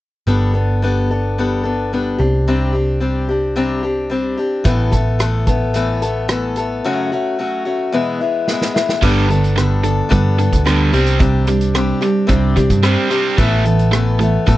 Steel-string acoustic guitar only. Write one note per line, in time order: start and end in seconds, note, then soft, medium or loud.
0.27 0.55 G3 medium
0.27 0.54 B3 medium
0.27 0.53 D4 medium
0.27 0.52 A4 medium
0.53 0.82 B3 soft
0.53 0.82 D4 soft
0.53 0.82 A4 soft
0.82 1.10 G3 medium
0.82 1.10 B3 medium
0.82 1.10 D4 medium
0.82 1.09 A4 medium
1.10 1.38 B3 soft
1.10 1.38 D4 soft
1.10 1.38 A4 soft
1.38 1.65 G3 medium
1.38 1.64 B3 medium
1.38 1.64 D4 medium
1.38 1.62 A4 medium
1.63 1.92 B3 soft
1.63 1.92 D4 soft
1.63 1.91 A4 soft
1.93 2.20 G3 medium
1.93 2.20 B3 medium
1.93 2.18 D4 medium
1.93 2.18 A4 medium
2.18 2.47 C4 soft
2.18 2.47 D4 medium
2.18 2.46 G4 medium
2.48 2.75 C3 medium
2.48 2.75 G3 medium
2.48 2.74 C4 medium
2.48 2.73 D4 medium
2.48 2.71 G4 medium
2.72 3.00 C4 soft
2.72 3.01 D4 soft
2.72 3.01 G4 medium
3.00 3.28 G3 medium
3.00 3.29 C4 medium
3.00 3.29 D4 medium
3.00 3.27 G4 medium
3.29 3.56 C4 soft
3.29 3.56 D4 soft
3.29 3.55 G4 soft
3.56 3.83 C3 medium
3.56 3.83 G3 medium
3.56 3.83 C4 medium
3.56 3.83 D4 medium
3.56 3.82 G4 medium
3.83 4.10 C4 soft
3.83 4.10 D4 soft
3.83 4.11 G4 soft
4.10 4.38 G3 medium
4.10 4.38 C4 medium
4.10 4.38 D4 medium
4.10 4.36 G4 medium
4.37 4.65 C4 soft
4.37 4.65 D4 soft
4.37 4.65 G4 medium
4.64 4.92 A2 medium
4.64 4.93 E3 medium
4.64 4.92 A3 medium
4.64 4.92 B3 medium
4.64 4.90 A4 medium
4.91 5.19 A3 soft
4.91 5.20 B3 soft
4.91 5.20 A4 medium
5.19 5.47 E3 medium
5.19 5.48 A3 medium
5.19 5.47 B3 medium
5.19 5.46 A4 medium
5.47 5.75 A3 soft
5.47 5.75 B3 medium
5.47 5.75 A4 soft
5.74 6.02 A2 medium
5.74 6.03 E3 medium
5.74 6.02 A3 medium
5.74 6.02 B3 medium
5.74 6.01 A4 medium
6.02 6.28 A3 soft
6.02 6.29 B3 soft
6.02 6.29 A4 medium
6.28 6.56 E3 medium
6.28 6.57 A3 medium
6.28 6.57 B3 medium
6.28 6.56 A4 medium
6.57 6.84 A3 soft
6.57 6.85 B3 soft
6.57 6.84 A4 medium
6.85 7.12 F#2 medium
6.85 7.12 C#3 medium
6.85 7.12 F#3 medium
6.85 7.12 A3 medium
6.85 7.12 C#4 medium
6.85 7.11 F#4 medium
7.12 7.38 F#3 soft
7.12 7.38 A3 soft
7.12 7.39 C#4 medium
7.12 7.39 F#4 medium
7.39 7.66 F#3 medium
7.39 7.66 A3 medium
7.39 7.65 C#4 medium
7.39 7.64 F#4 medium
7.65 7.93 F#3 soft
7.65 7.94 A3 soft
7.65 7.94 C#4 soft
7.65 7.93 F#4 medium
7.92 8.20 E2 medium
7.92 8.20 B2 medium
7.92 8.21 E3 medium
7.92 8.21 G#3 medium
7.92 8.20 B3 medium
7.92 8.20 E4 medium
8.21 8.47 E3 soft
8.21 8.48 G#3 soft
8.21 8.48 B3 soft
8.21 8.48 E4 medium
8.48 8.75 E3 medium
8.48 8.76 G#3 medium
8.48 8.74 B3 medium
8.48 8.73 E4 medium
8.74 9.02 E3 soft
8.74 9.03 G#3 medium
8.74 9.02 B3 medium
8.74 9.02 E4 medium
9.02 9.30 G3 medium
9.02 9.30 B3 medium
9.02 9.30 D4 medium
9.02 9.29 A4 loud
9.30 9.56 B3 soft
9.30 9.57 D4 medium
9.30 9.57 A4 medium
9.56 9.84 G3 medium
9.56 9.84 B3 medium
9.56 9.84 D4 medium
9.56 9.82 A4 medium
9.84 10.09 B3 soft
9.84 10.09 D4 soft
9.84 10.10 A4 medium
10.09 10.38 G3 medium
10.09 10.38 B3 medium
10.09 10.38 D4 medium
10.09 10.37 A4 medium
10.38 10.64 B3 soft
10.38 10.65 D4 soft
10.38 10.66 A4 medium
10.64 10.93 G3 medium
10.64 10.93 B3 medium
10.64 10.93 D4 medium
10.64 10.92 A4 medium
10.92 11.19 C4 soft
10.92 11.19 D4 medium
10.92 11.19 G4 medium
11.19 11.47 C3 medium
11.19 11.47 G3 medium
11.19 11.48 C4 medium
11.19 11.47 D4 medium
11.19 11.46 G4 medium
11.47 11.74 C4 soft
11.47 11.75 D4 soft
11.47 11.75 G4 medium
11.74 12.02 G3 medium
11.74 12.02 C4 medium
11.74 12.01 D4 medium
11.74 11.99 G4 medium
12.01 12.26 C4 soft
12.01 12.27 D4 soft
12.01 12.27 G4 medium
12.27 12.56 C3 medium
12.27 12.56 G3 medium
12.27 12.56 C4 medium
12.27 12.56 D4 medium
12.27 12.55 G4 medium
12.56 12.82 C4 soft
12.56 12.83 D4 medium
12.56 12.83 G4 medium
12.83 13.11 G3 medium
12.83 13.11 C4 medium
12.83 13.11 D4 medium
12.83 13.09 G4 medium
13.10 13.39 C4 soft
13.10 13.38 D4 soft
13.10 13.38 G4 medium
13.38 13.66 A2 medium
13.38 13.66 E3 medium
13.38 13.66 A3 medium
13.38 13.66 B3 medium
13.38 13.65 A4 medium
13.66 13.93 A3 soft
13.66 13.93 B3 medium
13.66 13.93 A4 medium
13.93 14.20 E3 medium
13.93 14.21 A3 medium
13.93 14.20 B3 medium
13.93 14.19 A4 medium
14.20 14.46 A3 soft
14.20 14.47 B3 medium
14.20 14.47 A4 soft
14.46 14.57 A2 medium
14.46 14.57 E3 medium
14.46 14.57 A3 medium
14.46 14.57 B3 medium
14.46 14.57 A4 medium